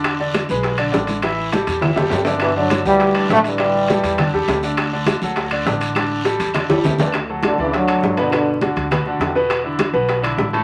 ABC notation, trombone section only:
X:1
M:4/4
L:1/8
Q:1/4=203
K:D
V:1 name="Trombone section" clef=bass
z8 | z8 | [B,,E,] [D,F,]2 [E,G,]3 [F,A,] [E,G,]- | [E,G,]4- [E,G,] z3 |
z8 | z8 | z2 [A,,D,] [C,E,] [D,F,]3 [B,,D,]- | [B,,D,]2 z6 |
z8 |]